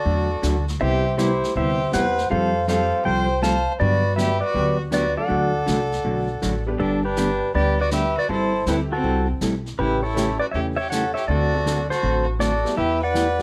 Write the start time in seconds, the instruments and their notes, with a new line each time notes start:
Already playing: fiddle F#4, pedal steel guitar A4 D5
0.05 upright bass E2, hollow-body jazz guitar D3 F#3 A3 D4 F#4, brush sweep
0.42 upright bass D2, hollow-body jazz guitar D3 F#3 A3 D4 F#4, snare, hi-hat pedal
0.68 snare
0.79 upright bass C2, hollow-body jazz guitar C3 G3 B3 E4 G4, honky-tonk piano G3 C4 E4 G4, fiddle G4, pedal steel guitar C5 E5, brush sweep
1.17 hollow-body jazz guitar C3 G3 B3 E4 G4, fiddle E4, pedal steel guitar G4 C5, snare, hi-hat pedal
1.43 snare
1.56 upright bass D2, hollow-body jazz guitar C3 G3 B3 E4 G4, fiddle G4, pedal steel guitar C5 E5, brush sweep
1.92 upright bass E2, hollow-body jazz guitar C3 G3 B3 E4 G4, honky-tonk piano G3 B3 C4 E4 G4, fiddle B4, pedal steel guitar C5 F#5, snare, hi-hat pedal
2.18 snare
2.30 upright bass F2, hollow-body jazz guitar F3 G3 C4 F4 A4, honky-tonk piano G3 A3 C4 F4 G4, fiddle A4, pedal steel guitar C5 F5, brush sweep
2.68 hollow-body jazz guitar F3 G3 C4 F4 A4, honky-tonk piano G3 A3 C4 F4 G4, fiddle A4, pedal steel guitar C5 F5, snare, hi-hat pedal
3.05 upright bass C2, hollow-body jazz guitar F3 G3 C4 F4 A4, fiddle C5, pedal steel guitar C5 G5, brush sweep
3.42 hollow-body jazz guitar F3 G3 C4 F4 A4, fiddle C5, pedal steel guitar F5 A5, snare, hi-hat pedal
3.80 upright bass G2, hollow-body jazz guitar D3 F#3 B3 D4 G4, fiddle F#4, pedal steel guitar B4 D5, brush sweep
4.16 hollow-body jazz guitar D3 F#3 B3 D4 G4, pedal steel guitar B4 E5, snare, hi-hat pedal
4.20 fiddle G4
4.41 pedal steel guitar B4 D5
4.45 fiddle F#4
4.54 upright bass D2, hollow-body jazz guitar D3 F#3 B3 D4 G4, brush sweep
4.91 hollow-body jazz guitar D3 F#3 B3 D4 G4, fiddle F#4, pedal steel guitar B4 D5, snare, hi-hat pedal
5.17 honky-tonk piano F#3 A3 D4 F#4 A4, fiddle A4, pedal steel guitar D5 F#5
5.28 upright bass D2, hollow-body jazz guitar D3 F#3 A3 D4 F#4, brush sweep
5.66 upright bass C2, hollow-body jazz guitar D3 F#3 A3 D4 F#4, snare, hi-hat pedal
5.92 snare
6.04 upright bass B1, hollow-body jazz guitar D3 F#3 A3 D4 F#4, brush sweep
6.42 upright bass A1, hollow-body jazz guitar D3 F#3 A3 D4 F#4, snare, hi-hat pedal
6.66 honky-tonk piano G3 B3 D4 G4 B4
6.79 upright bass G1, hollow-body jazz guitar D3 G3 B3 D4 G4, fiddle D4, pedal steel guitar D4 A4, brush sweep
7.05 fiddle D4, pedal steel guitar G4 B4
7.17 hollow-body jazz guitar D3 G3 B3 D4 G4, honky-tonk piano G3 B3 D4 G4, snare, hi-hat pedal
7.54 upright bass D2, hollow-body jazz guitar D3 G3 B3 D4 G4, fiddle G4, pedal steel guitar B4 D5, brush sweep
7.81 fiddle F#4, pedal steel guitar B4 D5
7.91 hollow-body jazz guitar D3 G3 B3 D4 G4, fiddle G4, pedal steel guitar B4 E5, snare, hi-hat pedal
8.17 fiddle F#4, pedal steel guitar B4 D5
8.29 upright bass G1, hollow-body jazz guitar G3 C4 E4 A4, fiddle E4, pedal steel guitar A4 C5, brush sweep
8.66 upright bass D2, hollow-body jazz guitar G3 C4 E4 A4, honky-tonk piano A3 C4 E4 G4, fiddle E4, pedal steel guitar G4 B4, snare, hi-hat pedal
8.92 fiddle C4, pedal steel guitar F#4 A4
9.04 upright bass C2, hollow-body jazz guitar G3 C4 E4 A4, brush sweep
9.41 upright bass B1, hollow-body jazz guitar G3 C4 E4 A4, snare, hi-hat pedal
9.66 snare
9.78 upright bass A1, hollow-body jazz guitar C#3 E3 A3 C#4 G4, fiddle E4, pedal steel guitar G4 B4, brush sweep
10.02 fiddle E4, pedal steel guitar A4 C#5
10.14 hollow-body jazz guitar C#3 E3 A3 C#4 G4, honky-tonk piano A3 C#4 E4 G4, snare, hi-hat pedal
10.40 fiddle F#4, pedal steel guitar B4 D5
10.52 upright bass E2, hollow-body jazz guitar C#3, fiddle G4, pedal steel guitar C#5 E5, brush sweep
10.56 hollow-body jazz guitar E3 A3 C#4 G4
10.76 fiddle G4, pedal steel guitar C#5 E5
10.90 hollow-body jazz guitar C#3 E3 A3 C#4 G4, fiddle A4, pedal steel guitar C#5 F#5, snare, hi-hat pedal
11.14 fiddle G4, pedal steel guitar C#5 E5, snare
11.28 upright bass D2, hollow-body jazz guitar D3 A3 C4 F#4 A4, fiddle F#4, pedal steel guitar A4 D5, brush sweep
11.54 honky-tonk piano A3 C4 D4 F#4
11.66 hollow-body jazz guitar D3 A3 C4 F#4 A4, snare, hi-hat pedal
11.90 fiddle F#4, pedal steel guitar A4 C5, snare
12.02 upright bass A1, hollow-body jazz guitar D3 A3 C4 F#4 A4, brush sweep
12.39 hollow-body jazz guitar D3 A3 C4 F#4 A4, fiddle F#4, pedal steel guitar A4 D5, snare, hi-hat pedal
12.64 honky-tonk piano G3 B3 E4 G4, snare
12.77 upright bass E2, hollow-body jazz guitar E3 B3 E4 G4, fiddle G4, pedal steel guitar B4 E5, brush sweep
13.02 fiddle B4, pedal steel guitar D5 F#5
13.14 hollow-body jazz guitar E3 B3 E4 G4, snare, hi-hat pedal
13.38 honky-tonk piano G3 B3